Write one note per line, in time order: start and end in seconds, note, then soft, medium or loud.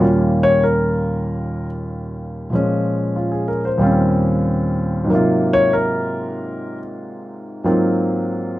0.00 2.52 D#2 soft
0.00 2.49 A#2 soft
0.00 2.52 G3 soft
0.00 2.52 A#3 soft
0.00 2.52 C#4 soft
0.00 2.52 F4 soft
0.43 0.63 C#5 medium
0.63 1.66 A#4 medium
2.50 3.77 A#2 soft
2.50 3.80 F3 soft
2.50 3.81 G#3 soft
2.55 3.80 C#4 medium
3.16 3.47 F4 soft
3.32 3.60 G#4 soft
3.48 3.68 A#4 soft
3.65 3.87 C5 soft
3.78 5.09 D#2 medium
3.78 5.09 A#2 soft
3.78 5.10 G3 soft
3.78 5.10 C4 soft
3.78 5.11 C#4 soft
3.83 5.11 F4 medium
5.04 7.62 G#2 medium
5.04 7.63 F#3 soft
5.10 7.67 C3 soft
5.10 7.64 A#3 soft
5.15 7.64 F4 medium
5.53 5.73 C#5 medium
5.73 6.77 A#4 medium
7.64 8.59 G#2 soft
7.64 8.59 F#3 soft
7.64 8.59 A#3 soft
7.64 8.59 C4 soft
7.64 8.59 F4 medium